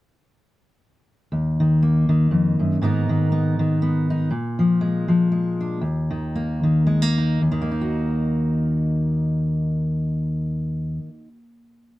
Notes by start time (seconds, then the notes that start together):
1.32 D#2
1.60 D#3
1.83 A#3
2.09 D#3
2.31 F2
2.59 F#2
2.82 G#2 D#3 B3 D#4 A#4
3.09 D#3
3.32 B3
3.59 D#3
3.82 B3
4.10 D#4
4.31 A#2
4.59 F3
4.81 G#3
5.08 F3
5.32 G#3
5.61 D4
5.81 D#2
6.11 D#3
6.36 A#3
6.63 D#3
6.87 G#3
7.02 A#3
7.18 D#4
7.42 D#2
7.52 D#3
7.62 A#3
7.71 D#4
7.81 F#4